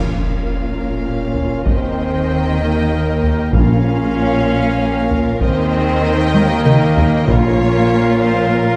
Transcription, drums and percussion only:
1.35 taiko low medium
1.66 taiko loud
3.22 taiko low medium
3.54 taiko loud
5.10 taiko low medium
5.41 taiko loud
6.34 taiko high medium
6.66 taiko mid loud
6.97 taiko low loud
7.29 taiko loud

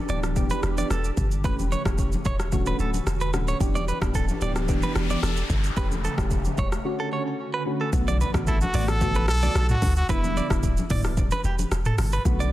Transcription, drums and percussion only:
0.09 low conga medium
0.09 shaker medium
0.23 cross-stick medium
0.23 shaker medium
0.36 kick medium
0.36 low conga medium
0.36 shaker medium
0.50 high conga medium
0.50 shaker medium
0.63 cross-stick medium
0.63 shaker soft
0.78 high conga medium
0.78 shaker medium
0.90 cross-stick medium
0.90 shaker medium
1.04 shaker soft
1.17 kick medium
1.17 high conga medium
1.17 low conga medium
1.17 shaker medium
1.31 shaker soft
1.44 kick loud
1.44 shaker medium
1.59 high conga medium
1.59 shaker medium
1.72 high conga medium
1.72 shaker medium
1.85 kick medium
1.85 cross-stick loud
1.85 shaker medium
1.98 kick medium
1.98 shaker medium
2.12 high conga medium
2.12 shaker soft
2.25 kick loud
2.25 low conga medium
2.25 shaker medium
2.40 cross-stick medium
2.40 shaker soft
2.52 kick medium
2.52 low conga medium
2.52 shaker medium
2.66 high conga medium
2.66 shaker medium
2.79 shaker medium
2.94 high conga medium
2.94 shaker medium
3.07 cross-stick medium
3.07 shaker medium
3.21 shaker medium
3.34 cross-stick loud
3.34 high conga medium
3.34 low conga medium
3.34 shaker medium
3.48 shaker soft
3.61 kick loud
3.61 shaker medium
3.75 high conga medium
3.75 shaker medium
3.88 high conga medium
3.88 shaker medium
4.02 kick medium
4.02 cross-stick loud
4.02 shaker medium
4.14 kick medium
4.14 shaker medium
4.28 high conga medium
4.28 shaker medium
4.41 low conga medium
4.41 shaker medium
4.56 cross-stick medium
4.56 shaker soft
4.68 kick medium
4.68 low conga medium
4.68 shaker medium
4.82 high conga medium
4.82 shaker medium
4.96 cross-stick loud
4.96 shaker medium
5.10 high conga medium
5.10 shaker medium
5.23 cross-stick medium
5.23 shaker medium
5.37 shaker medium
5.50 kick medium
5.50 high conga medium
5.50 low conga medium
5.50 shaker medium
5.64 shaker medium
5.77 kick loud
5.77 shaker medium
5.92 high conga medium
5.92 shaker medium
6.04 high conga medium
6.04 shaker medium
6.18 kick medium
6.18 cross-stick loud
6.18 shaker medium
6.31 kick medium
6.31 shaker medium
6.45 high conga medium
6.45 shaker soft
6.58 kick loud
6.58 low conga medium
6.58 shaker medium
6.72 cross-stick medium
6.72 shaker medium
7.93 kick loud
7.93 shaker medium
8.08 high conga medium
8.08 shaker medium
8.21 high conga medium
8.21 shaker medium
8.34 kick loud
8.34 cross-stick loud
8.34 shaker medium
8.47 kick medium
8.47 shaker medium
8.61 high conga medium
8.61 shaker medium
8.74 mid tom loud
8.74 open hi-hat medium
8.74 shaker medium
8.88 cross-stick medium
8.88 shaker medium
9.01 kick medium
9.01 low conga medium
9.01 shaker medium
9.15 high conga medium
9.15 shaker medium
9.28 cross-stick loud
9.28 shaker medium
9.43 high conga medium
9.43 shaker medium
9.55 cross-stick loud
9.55 shaker medium
9.69 mid tom loud
9.69 shaker medium
9.82 kick medium
9.82 open hi-hat medium
9.82 high conga medium
9.82 low conga medium
9.82 shaker medium
9.96 shaker medium
10.09 kick loud
10.09 shaker medium
10.24 high conga medium
10.24 shaker medium
10.37 high conga medium
10.37 shaker medium
10.50 kick loud
10.50 cross-stick loud
10.50 shaker medium
10.63 kick medium
10.63 shaker medium
10.77 high conga medium
10.77 shaker medium
10.90 kick loud
10.90 mid tom loud
10.90 open hi-hat medium
10.90 shaker medium
11.04 cross-stick medium
11.04 shaker medium
11.17 kick medium
11.17 low conga medium
11.17 shaker medium
11.31 high conga medium
11.31 shaker medium
11.44 shaker medium
11.59 high conga medium
11.59 shaker medium
11.72 cross-stick loud
11.72 shaker medium
11.85 mid tom loud
11.85 shaker medium
11.98 cross-stick loud
11.98 open hi-hat medium
11.98 high conga medium
11.98 low conga medium
11.98 shaker medium
12.12 shaker medium
12.25 kick loud
12.25 shaker medium
12.40 high conga medium
12.40 shaker medium

